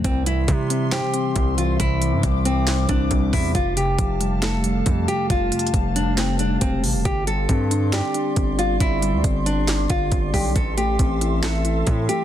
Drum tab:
HH |x--x--x--x--x--x--x--x--|x--x--x--x--x--x--x--o--|x--x--x--x--x--x--x--x--|x--xxxx--x--x--x--x--o--|
CP |------------x-----------|------------x-----------|------------x-----------|------------x-----------|
SD |------------o-----------|------------o-----------|------------o-----------|------------o-----------|
BD |o-----o-----------o-----|o-----o--------o--o--o--|o-----o-----------o-----|o-----o-----------o-----|

HH |x--x--x--x--x--x--x--x--|x--x--x--x--x--x--x--o--|x--x--x--x--x--x--x--x--|
CP |------------x-----------|------------x-----------|------------x-----------|
SD |------------o-----------|------------o-----------|------------o-----------|
BD |o-----o-----------o-----|o-----o--------o--o--o--|o-----o-----------o-----|